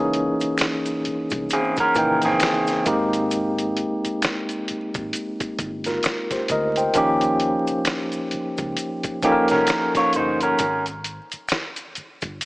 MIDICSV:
0, 0, Header, 1, 6, 480
1, 0, Start_track
1, 0, Key_signature, -4, "major"
1, 0, Tempo, 909091
1, 1755, Time_signature, 4, 2, 24, 8
1, 6574, End_track
2, 0, Start_track
2, 0, Title_t, "Clean electric guitar"
2, 0, Program_c, 0, 27
2, 809, Note_on_c, 0, 68, 70
2, 811, Note_on_c, 0, 60, 63
2, 935, Note_off_c, 0, 68, 0
2, 936, Note_off_c, 0, 60, 0
2, 951, Note_on_c, 0, 61, 65
2, 951, Note_on_c, 0, 70, 81
2, 1171, Note_off_c, 0, 70, 0
2, 1172, Note_off_c, 0, 61, 0
2, 1188, Note_on_c, 0, 68, 71
2, 1191, Note_on_c, 0, 60, 64
2, 1505, Note_off_c, 0, 68, 0
2, 1506, Note_off_c, 0, 60, 0
2, 4882, Note_on_c, 0, 67, 70
2, 4887, Note_on_c, 0, 58, 60
2, 5011, Note_off_c, 0, 67, 0
2, 5014, Note_off_c, 0, 58, 0
2, 5024, Note_on_c, 0, 61, 70
2, 5025, Note_on_c, 0, 70, 84
2, 5248, Note_off_c, 0, 61, 0
2, 5248, Note_off_c, 0, 70, 0
2, 5264, Note_on_c, 0, 73, 81
2, 5268, Note_on_c, 0, 65, 69
2, 5354, Note_off_c, 0, 73, 0
2, 5357, Note_off_c, 0, 65, 0
2, 5365, Note_on_c, 0, 72, 74
2, 5369, Note_on_c, 0, 63, 65
2, 5493, Note_off_c, 0, 72, 0
2, 5495, Note_off_c, 0, 63, 0
2, 5505, Note_on_c, 0, 70, 69
2, 5509, Note_on_c, 0, 61, 59
2, 5728, Note_off_c, 0, 70, 0
2, 5730, Note_off_c, 0, 61, 0
2, 6574, End_track
3, 0, Start_track
3, 0, Title_t, "Tine electric piano"
3, 0, Program_c, 1, 4
3, 0, Control_c, 1, 64, 127
3, 0, Note_on_c, 1, 52, 95
3, 0, Note_on_c, 1, 58, 87
3, 0, Note_on_c, 1, 61, 94
3, 0, Note_on_c, 1, 63, 86
3, 0, Note_on_c, 1, 68, 109
3, 627, Note_off_c, 1, 58, 0
3, 630, Note_off_c, 1, 61, 0
3, 631, Note_off_c, 1, 63, 0
3, 635, Note_off_c, 1, 68, 0
3, 643, Note_off_c, 1, 52, 0
3, 1030, Note_on_c, 1, 52, 80
3, 1033, Note_on_c, 1, 58, 73
3, 1039, Note_on_c, 1, 49, 72
3, 1041, Note_on_c, 1, 63, 72
3, 1046, Note_on_c, 1, 79, 83
3, 1503, Note_off_c, 1, 58, 0
3, 1506, Note_on_c, 1, 56, 87
3, 1509, Note_on_c, 1, 58, 78
3, 1512, Note_off_c, 1, 52, 0
3, 1512, Note_off_c, 1, 63, 0
3, 1515, Note_on_c, 1, 60, 81
3, 1517, Note_off_c, 1, 49, 0
3, 1518, Note_on_c, 1, 63, 77
3, 1520, Note_off_c, 1, 79, 0
3, 1521, Control_c, 1, 64, 0
3, 1522, Note_on_c, 1, 67, 99
3, 1622, Control_c, 1, 64, 127
3, 2304, Note_off_c, 1, 56, 0
3, 2306, Note_off_c, 1, 58, 0
3, 2309, Note_off_c, 1, 60, 0
3, 2310, Note_off_c, 1, 63, 0
3, 2312, Note_off_c, 1, 67, 0
3, 3096, Note_on_c, 1, 70, 63
3, 3100, Note_on_c, 1, 65, 51
3, 3324, Note_off_c, 1, 70, 0
3, 3326, Note_off_c, 1, 65, 0
3, 3337, Note_on_c, 1, 72, 62
3, 3340, Note_on_c, 1, 67, 54
3, 3431, Note_off_c, 1, 72, 0
3, 3432, Note_off_c, 1, 67, 0
3, 3440, Note_on_c, 1, 75, 70
3, 3441, Note_on_c, 1, 70, 62
3, 3570, Note_off_c, 1, 75, 0
3, 3571, Note_off_c, 1, 70, 0
3, 3577, Note_on_c, 1, 79, 62
3, 3579, Note_on_c, 1, 72, 54
3, 3665, Note_on_c, 1, 53, 101
3, 3669, Note_on_c, 1, 58, 94
3, 3675, Note_on_c, 1, 61, 86
3, 3679, Note_on_c, 1, 63, 87
3, 3683, Control_c, 1, 64, 0
3, 3684, Note_on_c, 1, 67, 107
3, 3790, Control_c, 1, 64, 127
3, 3804, Note_off_c, 1, 79, 0
3, 3805, Note_off_c, 1, 72, 0
3, 4464, Note_off_c, 1, 53, 0
3, 4466, Note_off_c, 1, 58, 0
3, 4469, Note_off_c, 1, 61, 0
3, 4471, Note_off_c, 1, 63, 0
3, 4473, Note_off_c, 1, 67, 0
3, 4871, Note_on_c, 1, 53, 77
3, 4874, Note_on_c, 1, 58, 73
3, 4877, Note_on_c, 1, 61, 72
3, 4882, Note_on_c, 1, 63, 72
3, 4886, Note_on_c, 1, 69, 71
3, 4920, Note_off_c, 1, 69, 0
3, 4921, Note_on_c, 1, 70, 94
3, 5593, Note_off_c, 1, 53, 0
3, 5594, Note_off_c, 1, 58, 0
3, 5596, Note_off_c, 1, 61, 0
3, 5598, Note_off_c, 1, 63, 0
3, 5600, Control_c, 1, 64, 0
3, 5618, Note_off_c, 1, 70, 0
3, 5709, Control_c, 1, 64, 127
3, 6574, End_track
4, 0, Start_track
4, 0, Title_t, "Fingered electric bass"
4, 0, Program_c, 2, 33
4, 0, Note_on_c, 2, 37, 100
4, 147, Note_off_c, 2, 37, 0
4, 701, Note_on_c, 2, 36, 75
4, 779, Note_off_c, 2, 36, 0
4, 1037, Note_on_c, 2, 34, 83
4, 1231, Note_off_c, 2, 34, 0
4, 1519, Note_on_c, 2, 32, 96
4, 2019, Note_off_c, 2, 32, 0
4, 2620, Note_on_c, 2, 32, 82
4, 2699, Note_off_c, 2, 32, 0
4, 2956, Note_on_c, 2, 31, 90
4, 3150, Note_off_c, 2, 31, 0
4, 3435, Note_on_c, 2, 38, 84
4, 3629, Note_off_c, 2, 38, 0
4, 3677, Note_on_c, 2, 39, 100
4, 3984, Note_off_c, 2, 39, 0
4, 4538, Note_on_c, 2, 37, 94
4, 4618, Note_off_c, 2, 37, 0
4, 5028, Note_on_c, 2, 36, 82
4, 5103, Note_off_c, 2, 36, 0
4, 5367, Note_on_c, 2, 31, 86
4, 5557, Note_off_c, 2, 31, 0
4, 5599, Note_on_c, 2, 32, 106
4, 5905, Note_off_c, 2, 32, 0
4, 6460, Note_on_c, 2, 31, 88
4, 6539, Note_off_c, 2, 31, 0
4, 6574, End_track
5, 0, Start_track
5, 0, Title_t, "Muted fingered electric bass strokes"
5, 229, Note_on_c, 9, 29, 41
5, 282, Note_off_c, 9, 29, 0
5, 567, Note_on_c, 9, 29, 44
5, 619, Note_off_c, 9, 29, 0
5, 2141, Note_on_c, 9, 29, 40
5, 2194, Note_off_c, 9, 29, 0
5, 2485, Note_on_c, 9, 29, 43
5, 2538, Note_off_c, 9, 29, 0
5, 4066, Note_on_c, 9, 29, 43
5, 4119, Note_off_c, 9, 29, 0
5, 4405, Note_on_c, 9, 29, 47
5, 4458, Note_off_c, 9, 29, 0
5, 4875, Note_on_c, 9, 29, 45
5, 4928, Note_off_c, 9, 29, 0
5, 5985, Note_on_c, 9, 29, 41
5, 6038, Note_off_c, 9, 29, 0
5, 6324, Note_on_c, 9, 29, 44
5, 6377, Note_off_c, 9, 29, 0
5, 6574, End_track
6, 0, Start_track
6, 0, Title_t, "Drums"
6, 71, Note_on_c, 9, 42, 66
6, 124, Note_off_c, 9, 42, 0
6, 213, Note_on_c, 9, 82, 50
6, 218, Note_on_c, 9, 42, 44
6, 266, Note_off_c, 9, 82, 0
6, 271, Note_off_c, 9, 42, 0
6, 305, Note_on_c, 9, 26, 61
6, 305, Note_on_c, 9, 82, 60
6, 311, Note_on_c, 9, 42, 78
6, 324, Note_on_c, 9, 38, 104
6, 325, Note_off_c, 9, 26, 0
6, 325, Note_on_c, 9, 26, 84
6, 358, Note_off_c, 9, 82, 0
6, 364, Note_off_c, 9, 42, 0
6, 376, Note_off_c, 9, 38, 0
6, 378, Note_off_c, 9, 26, 0
6, 453, Note_on_c, 9, 42, 42
6, 453, Note_on_c, 9, 82, 44
6, 506, Note_off_c, 9, 42, 0
6, 506, Note_off_c, 9, 82, 0
6, 555, Note_on_c, 9, 42, 61
6, 607, Note_off_c, 9, 42, 0
6, 687, Note_on_c, 9, 82, 41
6, 694, Note_on_c, 9, 42, 50
6, 695, Note_on_c, 9, 36, 92
6, 740, Note_off_c, 9, 82, 0
6, 747, Note_off_c, 9, 42, 0
6, 748, Note_off_c, 9, 36, 0
6, 791, Note_on_c, 9, 82, 62
6, 795, Note_on_c, 9, 42, 75
6, 844, Note_off_c, 9, 82, 0
6, 848, Note_off_c, 9, 42, 0
6, 931, Note_on_c, 9, 82, 44
6, 937, Note_on_c, 9, 36, 93
6, 939, Note_on_c, 9, 42, 46
6, 984, Note_off_c, 9, 82, 0
6, 990, Note_off_c, 9, 36, 0
6, 992, Note_off_c, 9, 42, 0
6, 1029, Note_on_c, 9, 82, 47
6, 1033, Note_on_c, 9, 36, 82
6, 1037, Note_on_c, 9, 42, 62
6, 1082, Note_off_c, 9, 82, 0
6, 1086, Note_off_c, 9, 36, 0
6, 1090, Note_off_c, 9, 42, 0
6, 1170, Note_on_c, 9, 42, 43
6, 1172, Note_on_c, 9, 82, 44
6, 1186, Note_on_c, 9, 38, 36
6, 1223, Note_off_c, 9, 42, 0
6, 1224, Note_off_c, 9, 82, 0
6, 1239, Note_off_c, 9, 38, 0
6, 1266, Note_on_c, 9, 42, 79
6, 1268, Note_on_c, 9, 26, 70
6, 1268, Note_on_c, 9, 82, 70
6, 1283, Note_on_c, 9, 38, 105
6, 1284, Note_off_c, 9, 26, 0
6, 1284, Note_on_c, 9, 26, 83
6, 1319, Note_off_c, 9, 42, 0
6, 1321, Note_off_c, 9, 82, 0
6, 1336, Note_off_c, 9, 38, 0
6, 1337, Note_off_c, 9, 26, 0
6, 1411, Note_on_c, 9, 82, 48
6, 1414, Note_on_c, 9, 42, 52
6, 1424, Note_on_c, 9, 38, 34
6, 1464, Note_off_c, 9, 82, 0
6, 1467, Note_off_c, 9, 42, 0
6, 1476, Note_off_c, 9, 38, 0
6, 1509, Note_on_c, 9, 42, 79
6, 1509, Note_on_c, 9, 82, 49
6, 1514, Note_on_c, 9, 36, 103
6, 1562, Note_off_c, 9, 42, 0
6, 1562, Note_off_c, 9, 82, 0
6, 1567, Note_off_c, 9, 36, 0
6, 1654, Note_on_c, 9, 42, 46
6, 1658, Note_on_c, 9, 82, 48
6, 1707, Note_off_c, 9, 42, 0
6, 1710, Note_off_c, 9, 82, 0
6, 1748, Note_on_c, 9, 82, 67
6, 1749, Note_on_c, 9, 42, 76
6, 1801, Note_off_c, 9, 42, 0
6, 1801, Note_off_c, 9, 82, 0
6, 1892, Note_on_c, 9, 42, 47
6, 1896, Note_on_c, 9, 82, 39
6, 1945, Note_off_c, 9, 42, 0
6, 1949, Note_off_c, 9, 82, 0
6, 1988, Note_on_c, 9, 42, 68
6, 2041, Note_off_c, 9, 42, 0
6, 2137, Note_on_c, 9, 42, 42
6, 2138, Note_on_c, 9, 82, 50
6, 2189, Note_off_c, 9, 42, 0
6, 2191, Note_off_c, 9, 82, 0
6, 2229, Note_on_c, 9, 42, 80
6, 2231, Note_on_c, 9, 26, 63
6, 2231, Note_on_c, 9, 82, 62
6, 2242, Note_on_c, 9, 38, 114
6, 2243, Note_off_c, 9, 26, 0
6, 2243, Note_on_c, 9, 26, 86
6, 2282, Note_off_c, 9, 42, 0
6, 2284, Note_off_c, 9, 82, 0
6, 2295, Note_off_c, 9, 38, 0
6, 2296, Note_off_c, 9, 26, 0
6, 2370, Note_on_c, 9, 42, 44
6, 2377, Note_on_c, 9, 82, 44
6, 2423, Note_off_c, 9, 42, 0
6, 2430, Note_off_c, 9, 82, 0
6, 2471, Note_on_c, 9, 42, 57
6, 2524, Note_off_c, 9, 42, 0
6, 2610, Note_on_c, 9, 42, 45
6, 2612, Note_on_c, 9, 82, 45
6, 2613, Note_on_c, 9, 36, 95
6, 2663, Note_off_c, 9, 42, 0
6, 2665, Note_off_c, 9, 82, 0
6, 2666, Note_off_c, 9, 36, 0
6, 2709, Note_on_c, 9, 42, 77
6, 2720, Note_on_c, 9, 82, 63
6, 2761, Note_off_c, 9, 42, 0
6, 2773, Note_off_c, 9, 82, 0
6, 2852, Note_on_c, 9, 42, 45
6, 2854, Note_on_c, 9, 36, 93
6, 2856, Note_on_c, 9, 82, 44
6, 2905, Note_off_c, 9, 42, 0
6, 2907, Note_off_c, 9, 36, 0
6, 2909, Note_off_c, 9, 82, 0
6, 2949, Note_on_c, 9, 42, 66
6, 2950, Note_on_c, 9, 36, 86
6, 2954, Note_on_c, 9, 82, 48
6, 3002, Note_off_c, 9, 42, 0
6, 3003, Note_off_c, 9, 36, 0
6, 3006, Note_off_c, 9, 82, 0
6, 3084, Note_on_c, 9, 42, 43
6, 3094, Note_on_c, 9, 82, 43
6, 3101, Note_on_c, 9, 38, 37
6, 3137, Note_off_c, 9, 42, 0
6, 3147, Note_off_c, 9, 82, 0
6, 3153, Note_off_c, 9, 38, 0
6, 3183, Note_on_c, 9, 42, 81
6, 3190, Note_on_c, 9, 26, 69
6, 3190, Note_on_c, 9, 82, 66
6, 3200, Note_on_c, 9, 38, 109
6, 3201, Note_off_c, 9, 26, 0
6, 3201, Note_on_c, 9, 26, 85
6, 3236, Note_off_c, 9, 42, 0
6, 3243, Note_off_c, 9, 82, 0
6, 3252, Note_off_c, 9, 38, 0
6, 3254, Note_off_c, 9, 26, 0
6, 3330, Note_on_c, 9, 42, 51
6, 3331, Note_on_c, 9, 36, 89
6, 3331, Note_on_c, 9, 82, 51
6, 3340, Note_on_c, 9, 38, 35
6, 3383, Note_off_c, 9, 42, 0
6, 3384, Note_off_c, 9, 36, 0
6, 3384, Note_off_c, 9, 82, 0
6, 3393, Note_off_c, 9, 38, 0
6, 3424, Note_on_c, 9, 42, 81
6, 3430, Note_on_c, 9, 82, 46
6, 3431, Note_on_c, 9, 36, 88
6, 3476, Note_off_c, 9, 42, 0
6, 3483, Note_off_c, 9, 36, 0
6, 3483, Note_off_c, 9, 82, 0
6, 3568, Note_on_c, 9, 42, 50
6, 3579, Note_on_c, 9, 82, 49
6, 3621, Note_off_c, 9, 42, 0
6, 3632, Note_off_c, 9, 82, 0
6, 3662, Note_on_c, 9, 42, 78
6, 3670, Note_on_c, 9, 82, 69
6, 3672, Note_on_c, 9, 36, 103
6, 3715, Note_off_c, 9, 42, 0
6, 3723, Note_off_c, 9, 82, 0
6, 3725, Note_off_c, 9, 36, 0
6, 3807, Note_on_c, 9, 42, 47
6, 3817, Note_on_c, 9, 82, 39
6, 3859, Note_off_c, 9, 42, 0
6, 3869, Note_off_c, 9, 82, 0
6, 3905, Note_on_c, 9, 42, 67
6, 3958, Note_off_c, 9, 42, 0
6, 4051, Note_on_c, 9, 82, 52
6, 4052, Note_on_c, 9, 42, 42
6, 4104, Note_off_c, 9, 82, 0
6, 4105, Note_off_c, 9, 42, 0
6, 4145, Note_on_c, 9, 42, 80
6, 4146, Note_on_c, 9, 26, 62
6, 4146, Note_on_c, 9, 82, 64
6, 4157, Note_on_c, 9, 38, 113
6, 4159, Note_off_c, 9, 26, 0
6, 4159, Note_on_c, 9, 26, 85
6, 4197, Note_off_c, 9, 42, 0
6, 4198, Note_off_c, 9, 82, 0
6, 4210, Note_off_c, 9, 38, 0
6, 4211, Note_off_c, 9, 26, 0
6, 4287, Note_on_c, 9, 42, 43
6, 4291, Note_on_c, 9, 82, 45
6, 4340, Note_off_c, 9, 42, 0
6, 4344, Note_off_c, 9, 82, 0
6, 4388, Note_on_c, 9, 42, 57
6, 4441, Note_off_c, 9, 42, 0
6, 4527, Note_on_c, 9, 82, 43
6, 4530, Note_on_c, 9, 42, 48
6, 4533, Note_on_c, 9, 36, 90
6, 4580, Note_off_c, 9, 82, 0
6, 4583, Note_off_c, 9, 42, 0
6, 4585, Note_off_c, 9, 36, 0
6, 4628, Note_on_c, 9, 42, 79
6, 4637, Note_on_c, 9, 82, 64
6, 4681, Note_off_c, 9, 42, 0
6, 4690, Note_off_c, 9, 82, 0
6, 4770, Note_on_c, 9, 42, 47
6, 4774, Note_on_c, 9, 36, 93
6, 4774, Note_on_c, 9, 82, 46
6, 4822, Note_off_c, 9, 42, 0
6, 4826, Note_off_c, 9, 82, 0
6, 4827, Note_off_c, 9, 36, 0
6, 4871, Note_on_c, 9, 36, 85
6, 4871, Note_on_c, 9, 82, 47
6, 4873, Note_on_c, 9, 42, 66
6, 4923, Note_off_c, 9, 36, 0
6, 4924, Note_off_c, 9, 82, 0
6, 4926, Note_off_c, 9, 42, 0
6, 5006, Note_on_c, 9, 42, 44
6, 5011, Note_on_c, 9, 82, 45
6, 5022, Note_on_c, 9, 38, 35
6, 5059, Note_off_c, 9, 42, 0
6, 5064, Note_off_c, 9, 82, 0
6, 5075, Note_off_c, 9, 38, 0
6, 5105, Note_on_c, 9, 42, 85
6, 5110, Note_on_c, 9, 26, 72
6, 5110, Note_on_c, 9, 82, 71
6, 5121, Note_on_c, 9, 38, 104
6, 5123, Note_off_c, 9, 26, 0
6, 5123, Note_on_c, 9, 26, 82
6, 5157, Note_off_c, 9, 42, 0
6, 5163, Note_off_c, 9, 82, 0
6, 5174, Note_off_c, 9, 38, 0
6, 5175, Note_off_c, 9, 26, 0
6, 5253, Note_on_c, 9, 36, 89
6, 5254, Note_on_c, 9, 42, 48
6, 5255, Note_on_c, 9, 82, 51
6, 5264, Note_on_c, 9, 38, 35
6, 5305, Note_off_c, 9, 36, 0
6, 5307, Note_off_c, 9, 42, 0
6, 5308, Note_off_c, 9, 82, 0
6, 5316, Note_off_c, 9, 38, 0
6, 5348, Note_on_c, 9, 42, 74
6, 5352, Note_on_c, 9, 82, 49
6, 5401, Note_off_c, 9, 42, 0
6, 5405, Note_off_c, 9, 82, 0
6, 5494, Note_on_c, 9, 42, 47
6, 5499, Note_on_c, 9, 82, 47
6, 5547, Note_off_c, 9, 42, 0
6, 5552, Note_off_c, 9, 82, 0
6, 5590, Note_on_c, 9, 42, 79
6, 5590, Note_on_c, 9, 82, 66
6, 5595, Note_on_c, 9, 36, 114
6, 5642, Note_off_c, 9, 42, 0
6, 5643, Note_off_c, 9, 82, 0
6, 5648, Note_off_c, 9, 36, 0
6, 5733, Note_on_c, 9, 42, 48
6, 5739, Note_on_c, 9, 82, 39
6, 5786, Note_off_c, 9, 42, 0
6, 5791, Note_off_c, 9, 82, 0
6, 5831, Note_on_c, 9, 42, 65
6, 5837, Note_on_c, 9, 82, 41
6, 5884, Note_off_c, 9, 42, 0
6, 5889, Note_off_c, 9, 82, 0
6, 5975, Note_on_c, 9, 42, 45
6, 5976, Note_on_c, 9, 82, 52
6, 6028, Note_off_c, 9, 42, 0
6, 6029, Note_off_c, 9, 82, 0
6, 6065, Note_on_c, 9, 26, 60
6, 6065, Note_on_c, 9, 82, 61
6, 6069, Note_on_c, 9, 42, 81
6, 6082, Note_on_c, 9, 38, 110
6, 6083, Note_off_c, 9, 26, 0
6, 6083, Note_on_c, 9, 26, 86
6, 6118, Note_off_c, 9, 82, 0
6, 6122, Note_off_c, 9, 42, 0
6, 6135, Note_off_c, 9, 38, 0
6, 6136, Note_off_c, 9, 26, 0
6, 6211, Note_on_c, 9, 42, 44
6, 6212, Note_on_c, 9, 82, 44
6, 6264, Note_off_c, 9, 42, 0
6, 6265, Note_off_c, 9, 82, 0
6, 6312, Note_on_c, 9, 42, 62
6, 6316, Note_on_c, 9, 82, 49
6, 6364, Note_off_c, 9, 42, 0
6, 6369, Note_off_c, 9, 82, 0
6, 6449, Note_on_c, 9, 82, 42
6, 6452, Note_on_c, 9, 42, 48
6, 6455, Note_on_c, 9, 36, 93
6, 6502, Note_off_c, 9, 82, 0
6, 6505, Note_off_c, 9, 42, 0
6, 6507, Note_off_c, 9, 36, 0
6, 6552, Note_on_c, 9, 42, 75
6, 6556, Note_on_c, 9, 82, 64
6, 6574, Note_off_c, 9, 42, 0
6, 6574, Note_off_c, 9, 82, 0
6, 6574, End_track
0, 0, End_of_file